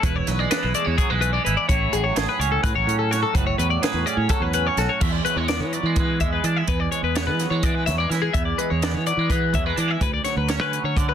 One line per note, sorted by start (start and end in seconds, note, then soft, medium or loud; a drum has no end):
0.00 0.21 E1 loud
0.00 1.66 E2 medium
0.00 0.31 E4 medium
0.00 0.16 B4 medium
0.00 kick loud
0.00 closed hi-hat loud
0.16 0.28 C#5 medium
0.27 0.45 B1 medium
0.27 0.40 F#3 medium
0.27 0.39 B4 medium
0.27 snare soft
0.27 closed hi-hat medium
0.39 0.98 G#3 soft
0.39 0.51 D5 medium
0.51 0.63 D4 medium
0.51 0.74 B4 medium
0.51 snare loud
0.51 closed hi-hat loud
0.63 0.72 B1 medium
0.63 1.45 E4 medium
0.74 0.84 A3 medium
0.74 0.86 D5 medium
0.74 closed hi-hat medium
0.84 0.95 E2 medium
0.84 1.21 B3 soft
0.84 0.97 C#5 medium
0.98 1.10 F#3 medium
0.98 1.10 G#4 medium
0.98 kick loud
0.98 closed hi-hat medium
1.10 1.37 B1 medium
1.10 1.69 G#3 soft
1.10 1.20 B4 medium
1.21 1.34 A3 medium
1.21 1.33 B4 medium
1.21 closed hi-hat medium
1.33 1.69 B3 soft
1.33 1.44 D5 medium
1.45 1.55 G#1 medium
1.45 1.95 E4 medium
1.45 1.57 B4 medium
1.45 closed hi-hat medium
1.57 1.68 D5 medium
1.69 1.87 A1 loud
1.69 3.32 A2 medium
1.69 1.92 C#5 loud
1.69 kick loud
1.69 closed hi-hat medium
1.92 2.11 A1 medium
1.92 2.62 F#3 medium
1.92 2.04 G#4 medium
1.92 closed hi-hat medium
2.04 2.17 C#5 medium
2.16 2.26 A1 loud
2.16 3.10 G#4 medium
2.16 2.28 A4 medium
2.16 snare loud
2.16 closed hi-hat medium
2.29 2.40 B4 medium
2.39 2.57 C#2 medium
2.39 2.85 C#4 medium
2.39 2.51 C#5 medium
2.39 closed hi-hat medium
2.52 2.63 A4 medium
2.63 2.73 A2 medium
2.63 3.57 F#3 medium
2.63 2.75 B4 medium
2.63 kick loud
2.63 closed hi-hat medium
2.75 2.85 A1 medium
2.75 2.99 C#5 medium
2.87 3.23 A2 medium
2.87 3.31 C#4 medium
2.87 closed hi-hat medium
2.99 3.11 A4 medium
3.11 3.32 F#4 medium
3.11 3.22 C#5 medium
3.11 snare soft
3.11 closed hi-hat medium
3.23 3.35 A4 medium
3.33 3.53 F#1 medium
3.33 5.00 A2 medium
3.33 3.46 B4 medium
3.33 kick loud
3.33 closed hi-hat medium
3.47 3.58 C#5 medium
3.58 3.76 E2 medium
3.58 4.29 F#3 medium
3.58 3.70 B4 medium
3.58 closed hi-hat medium
3.70 3.82 D5 medium
3.82 4.77 G#4 medium
3.82 4.06 B4 medium
3.82 snare loud
3.82 closed hi-hat loud
3.94 4.03 E2 medium
4.06 4.52 C#4 medium
4.06 4.17 D5 medium
4.06 closed hi-hat medium
4.17 4.26 A2 medium
4.17 4.29 C#5 medium
4.29 5.01 F#3 medium
4.29 4.42 A4 medium
4.29 kick loud
4.29 closed hi-hat medium
4.40 4.68 E2 medium
4.40 4.53 B4 medium
4.53 4.98 C#4 medium
4.53 4.67 B4 medium
4.53 closed hi-hat medium
4.67 4.78 C#5 medium
4.77 4.86 B1 medium
4.77 4.99 F#4 medium
4.77 4.90 A4 medium
4.77 snare soft
4.77 closed hi-hat medium
4.89 5.01 C#5 medium
5.00 6.69 E2 medium
5.00 5.19 E2 medium
5.00 5.12 E5 medium
5.00 kick loud
5.00 crash loud
5.12 5.24 D5 medium
5.25 5.37 F#3 medium
5.25 5.37 B4 medium
5.25 closed hi-hat medium
5.36 5.61 E2 medium
5.36 5.73 G#3 soft
5.36 5.48 C#5 medium
5.48 7.16 B3 medium
5.48 5.61 D5 medium
5.48 snare loud
5.48 closed hi-hat medium
5.60 5.78 E3 medium
5.60 5.73 C#5 medium
5.73 5.86 F#3 medium
5.73 5.97 D5 medium
5.73 closed hi-hat medium
5.83 6.22 E3 medium
5.83 6.21 G#3 soft
5.96 7.43 E3 medium
5.96 6.20 B4 medium
5.96 kick loud
5.96 closed hi-hat medium
6.20 6.38 E2 medium
6.20 6.93 G#3 medium
6.20 6.32 E5 medium
6.20 kick medium
6.20 closed hi-hat medium
6.33 6.45 B4 medium
6.44 6.62 E3 medium
6.44 6.57 D4 medium
6.44 6.56 D5 medium
6.44 closed hi-hat medium
6.56 6.68 E4 medium
6.56 6.68 E5 medium
6.68 6.86 E2 medium
6.68 8.32 E2 medium
6.68 6.80 B4 medium
6.68 kick loud
6.68 closed hi-hat medium
6.80 6.91 D5 medium
6.92 7.40 G#3 medium
6.92 7.03 C#5 medium
6.92 closed hi-hat medium
7.03 7.29 E2 medium
7.03 7.15 B4 medium
7.15 8.32 B3 medium
7.15 7.27 C#5 medium
7.15 snare loud
7.15 closed hi-hat medium
7.27 7.45 E3 medium
7.27 7.50 B4 medium
7.39 7.52 F#3 medium
7.39 snare soft
7.39 closed hi-hat medium
7.50 7.89 E3 medium
7.50 7.87 G#3 soft
7.50 7.64 C#5 medium
7.63 9.09 E3 medium
7.63 7.75 D5 medium
7.63 kick loud
7.63 closed hi-hat medium
7.75 7.86 B4 medium
7.86 8.05 E2 medium
7.86 8.00 F#3 medium
7.86 7.98 E5 medium
7.86 snare soft
7.86 closed hi-hat medium
7.98 8.35 G#3 soft
7.98 8.10 D5 medium
8.10 8.28 E3 medium
8.10 9.09 E4 medium
8.10 8.22 E5 medium
8.10 snare soft
8.10 closed hi-hat medium
8.22 8.34 G#4 medium
8.33 9.98 E2 medium
8.33 8.52 E2 medium
8.33 8.45 E5 medium
8.33 kick loud
8.33 closed hi-hat medium
8.45 8.58 D5 medium
8.58 9.06 G#3 medium
8.58 8.70 B4 medium
8.58 closed hi-hat medium
8.70 8.95 E2 medium
8.70 8.83 C#5 medium
8.82 9.99 B3 medium
8.82 8.95 D5 medium
8.82 snare loud
8.82 closed hi-hat medium
8.94 9.12 E3 medium
8.94 9.06 C#5 medium
9.06 9.19 F#3 medium
9.06 9.30 D5 medium
9.06 closed hi-hat medium
9.17 9.56 E3 medium
9.17 9.52 G#3 soft
9.30 10.04 E3 medium
9.30 9.54 B4 medium
9.30 kick loud
9.30 closed hi-hat medium
9.53 9.72 E2 medium
9.53 9.66 F#3 medium
9.53 9.66 E5 medium
9.53 kick medium
9.53 closed hi-hat medium
9.66 10.01 G#3 soft
9.66 9.79 B4 medium
9.76 9.95 E3 medium
9.76 9.88 D4 medium
9.76 9.90 D5 medium
9.76 closed hi-hat medium
9.88 10.00 E4 medium
9.88 10.02 E5 medium
10.01 11.14 D2 medium
10.01 10.19 D2 medium
10.01 10.13 B4 medium
10.01 kick loud
10.01 closed hi-hat medium
10.14 10.24 D5 medium
10.24 10.72 F#3 soft
10.24 10.36 C#5 medium
10.24 snare soft
10.24 closed hi-hat medium
10.36 10.60 D2 medium
10.36 10.48 B4 medium
10.48 11.14 C#4 medium
10.48 10.60 C#5 medium
10.48 snare loud
10.48 closed hi-hat medium
10.60 10.78 D3 medium
10.60 10.84 B4 medium
10.73 11.14 F#3 medium
10.73 closed hi-hat medium
10.84 11.14 D3 medium
10.84 10.97 C#5 medium
10.97 11.14 D3 medium
10.97 11.08 D5 medium
10.97 kick loud
10.97 closed hi-hat medium
11.09 11.14 B4 medium